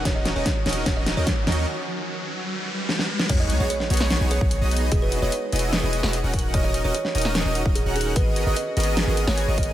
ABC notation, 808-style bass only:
X:1
M:4/4
L:1/16
Q:1/4=148
K:G#m
V:1 name="808-style bass" clef=bass
z3 D,,, z2 D,,,2 D,,,3 D,, z2 D,,2 | z16 | B,,,3 B,,, z2 B,,,3 B,,,2 B,,,2 B,,,3 | E,,,3 E,,, z2 E,,,3 E,,,2 E,,,2 D,,,3 |
D,,,3 D,,, z2 D,,,3 D,,,2 D,,,2 D,,,3 | G,,,3 G,,, z2 G,,,3 G,,,2 G,,,2 G,,,3 |]